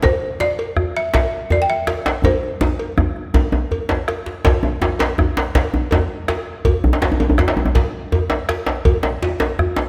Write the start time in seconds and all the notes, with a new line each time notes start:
0.02 C5, bombo low, cowbell, djembe slap, djembe bass
0.22 djembe slap
0.40 D5, djembe slap
0.59 cowbell
0.76 bombo rim, djembe bass
0.97 E5
1.14 E5, bombo low, cowbell, djembe slap
1.50 D5, bombo rim, cowbell, djembe tone, djembe bass
1.62 G5
1.70 E5
1.87 bombo rim, cowbell, djembe slap
2.06 bombo rim, djembe slap
2.24 C5, bombo rim, bombo low, cowbell, djembe tone, djembe bass
2.43 bombo rim, djembe slap
2.61 bombo rim, djembe slap, djembe tone
2.79 cowbell
2.98 bombo rim, djembe slap, djembe tone, djembe bass
3.16 bombo rim, djembe slap
3.34 bombo low, cowbell, djembe slap, djembe tone
3.52 bombo rim, djembe tone
3.71 bombo rim, cowbell, djembe bass
3.89 bombo rim, djembe slap, djembe bass
4.08 bombo rim, cowbell, djembe slap
4.26 bombo rim, djembe slap
4.45 bombo low, cowbell, djembe slap, djembe bass
4.63 djembe slap, djembe tone
4.82 djembe slap, djembe tone
4.99 cowbell, djembe slap
5.18 bombo rim, djembe tone, djembe bass
5.37 djembe slap
5.55 bombo low, cowbell, djembe slap
5.74 djembe tone
5.91 cowbell, djembe slap, djembe tone, djembe bass
6.28 bombo rim, cowbell, djembe slap
6.47 bombo rim
6.65 bombo low, cowbell, djembe bass
6.84 djembe slap, djembe bass
6.93 djembe slap
7.02 djembe slap, djembe tone
7.12 djembe tone
7.20 cowbell, djembe tone
7.30 djembe bass
7.38 bombo rim, djembe slap, djembe bass
7.48 djembe slap
7.57 djembe tone
7.66 djembe tone
7.75 bombo low, cowbell, djembe slap
8.12 bombo rim, cowbell, djembe tone, djembe bass
8.30 djembe slap
8.49 bombo rim, cowbell, djembe slap
8.66 bombo rim, djembe slap
8.85 bombo low, cowbell, djembe bass
9.03 djembe slap
9.23 djembe slap, djembe tone
9.40 cowbell, djembe slap
9.59 bombo rim, djembe bass
9.76 djembe slap